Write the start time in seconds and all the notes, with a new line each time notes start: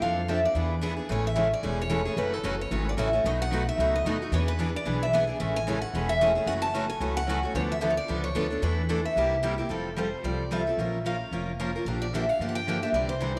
0.01 F2 F3 C4 D4 A4 F5
0.28 F3 C4 D4 A4 E5
0.45 D5
0.55 E2 E3 B3 D4 G#4 B4
0.81 E3 B3 D4 G#4 B4
0.97 B3 D4 G#4
1.09 A1 C#3 E3 G#3 A3 C#4 E4 G#4 A4 C#5
1.27 E5
1.35 C#3 E3 G#3 A3 C#4 E4 G#4 A4
1.54 D5
1.63 E1 C#3 E3 G#3 A3 C#4 E4 G#4 A4
1.82 C#5
1.90 C#3 E3 G#3 A3 C#4 E4 G#4 A4
2.05 A3 C#4 G#4
2.16 F#1 C#3 E3 F#3 A3 C#4 E4 F#4 A4 B4
2.34 A4
2.43 F#1 C#3 E3 F#3 A3 C#4 E4 F#4 A4
2.61 C#5
2.71 G#1 C#3 E3 F#3 A3 C#4 E4 F#4 A4
2.89 D5
2.97 A1 C#3 E3 F#3 A3 C#4 E4 F#4 A4 E5
3.13 A3 C#4 F#4
3.24 B1 B2 F#3 A3 D#4 F#4 B4 D#5
3.42 F#5
3.52 B2 F#3 A3 D#4 F#4 B4
3.69 E5
3.78 C#2 B2 F#3 A3 D#4 F#4 B4
3.96 D#5
4.05 D#2 B2 F#3 A3 D#4 F#4 B4
4.22 A3 D#4 F#4
4.32 E2 E3 B3 D4 G#4 B4 C#5
4.48 B4
4.59 E3 B3 D4 G#4 B4
4.76 D5
4.85 B1 E3 B3 D4 G#4 B4
5.03 E5
5.13 E3 B3 D4 G#4 B4 G#5
5.27 B3 D4 G#4
5.40 A1 C#3 E3 G#3 A3 C#4 E4 G#4 A4 E5
5.56 G#5
5.67 C#3 E3 G#3 A3 C#4 E4 G#4 A4
5.82 F#5
5.93 E1 C#3 E3 G#3 A3 C#4 E4 G#4 A4
6.09 E5
6.21 C#3 E3 G#3 A3 C#4 E4 G#4 A4
6.35 A3 C#4 G#4
6.46 F#1 C#3 E3 F#3 A3 C#4 E4 F#4 A4 F#5
6.62 A5
6.74 C#3 E3 F#3 A3 C#4 E4 F#4 A4
6.90 G#5
7.00 C#2 C#3 E3 F#3 A3 C#4 E4 F#4 A4
7.17 F#5
7.27 C#3 E3 F#3 A3 C#4 E4 F#4 A4
7.43 A3 C#4 F#4
7.55 D2 D3 F3 B3 D4 A4 C#5
7.72 E5
7.81 D3 F3 B3 D4 A4
7.90 C#5
7.97 D5
8.08 C#2 D3 F3 B3 D4 A4
8.24 C#5
8.35 D2 D3 F3 B3 D4 A4
8.50 B3 D4 A4
8.62 E2 E3 A3 D4 E4 A4 B4
8.89 E3 A3 D4 E4 A4
9.05 E5
9.16 C2 C3 G3 A#3 E4 G4
9.43 C3 G3 A#3 E4 G4
9.58 A#3 E4 G4
9.69 F1 F3 G3 C4 F4 A4
9.96 F3 G3 C4 F4 A4 C5
10.23 C2 F3 G3 C4 F4 A4 D5
10.51 F3 G3 C4 F4 A4 E5
10.67 C4 F4 A4
10.77 A#1 F3 A#3 C#4 F4 A#4
11.06 F3 A#3 C#4 F4 A#4 F5
11.31 F1 F3 A#3 C#4 F4 A#4
11.60 F3 A#3 C#4 F4 A#4
11.76 C#4 F4 A#4
11.85 A#1 D3 F3 A#3 D4 G4 A#4
12.02 D5
12.14 D3 F3 A#3 D4 G4 E5
12.29 F5
12.39 G2 D3 F3 A#3 D4 G4
12.49 F#5
12.55 G5
12.68 D3 F3 A#3 D4 G4
12.82 A#3 D4 G4 E5
12.92 C2 C3 D3 E3 G3 C4 D4 E4 G4 C5 D5
13.09 C5
13.20 C3 D3 E3 G3 C4 D4 E4 G4 C5